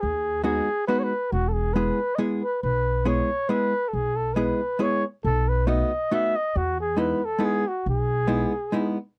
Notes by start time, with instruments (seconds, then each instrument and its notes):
0.00 upright bass D#2, flugelhorn G#4
0.44 hollow-body jazz guitar G#3 B3 D#4 F#4, flugelhorn G#4
0.87 hollow-body jazz guitar G#3 B3 D#4 F#4, flugelhorn B4
0.99 flugelhorn C#5
1.04 flugelhorn B4
1.32 upright bass E1, flugelhorn F#4
1.48 flugelhorn A4
1.53 flugelhorn G#4
1.74 hollow-body jazz guitar G#3 B3 E4 G#4, flugelhorn B4
2.15 hollow-body jazz guitar G#3 B3 E4 G#4, flugelhorn D#5
2.42 flugelhorn B4
2.63 upright bass B1, flugelhorn B4
3.05 hollow-body jazz guitar G#3 B3 E4 G#4, flugelhorn C#5
3.49 hollow-body jazz guitar G#3 B3 E4 G#4, flugelhorn B4
3.88 flugelhorn A4
3.93 upright bass B1, flugelhorn G#4
4.16 flugelhorn A4
4.34 hollow-body jazz guitar G#3 B3 E4 G#4, flugelhorn B4
4.79 hollow-body jazz guitar G#3 B3 E4 G#4, flugelhorn C#5
5.25 upright bass B1, flugelhorn A4
5.49 flugelhorn B4
5.67 hollow-body jazz guitar A3 B3 D#4 F#4, flugelhorn D#5
6.11 hollow-body jazz guitar A3 B3 D#4 F#4, flugelhorn E5
6.36 flugelhorn D#5
6.56 upright bass E2, flugelhorn F#4
6.80 flugelhorn G#4
6.97 hollow-body jazz guitar G#3 B3 D#4 E4, flugelhorn B4
7.25 flugelhorn A4
7.39 hollow-body jazz guitar G#3 B3 D#4 E4
7.45 flugelhorn G#4
7.68 flugelhorn F#4
7.86 upright bass B1, flugelhorn G#4
8.27 hollow-body jazz guitar G#3 B3 D#4 E4
8.72 hollow-body jazz guitar G#3 B3 D#4 E4